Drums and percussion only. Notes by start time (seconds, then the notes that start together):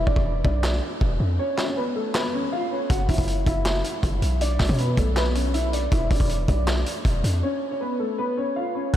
0.07 kick
0.16 kick
0.45 kick
0.63 snare, clap
1.01 kick
1.58 snare, clap
2.14 snare, clap
2.90 kick, closed hi-hat
3.09 kick, closed hi-hat
3.13 closed hi-hat
3.18 kick, closed hi-hat
3.23 closed hi-hat
3.27 closed hi-hat
3.46 kick, closed hi-hat
3.65 snare, clap
3.84 closed hi-hat
4.03 kick, closed hi-hat
4.22 closed hi-hat
4.41 closed hi-hat
4.60 kick, snare, clap
4.64 closed hi-hat
4.69 kick, closed hi-hat
4.74 closed hi-hat
4.78 closed hi-hat
4.97 kick, closed hi-hat
5.16 snare, clap
5.35 closed hi-hat
5.54 closed hi-hat
5.73 closed hi-hat
5.92 kick, closed hi-hat
6.11 kick, closed hi-hat
6.15 closed hi-hat
6.20 kick, closed hi-hat
6.25 closed hi-hat
6.29 closed hi-hat
6.48 kick, closed hi-hat
6.67 snare, clap
6.86 closed hi-hat
7.05 kick, closed hi-hat
7.24 closed hi-hat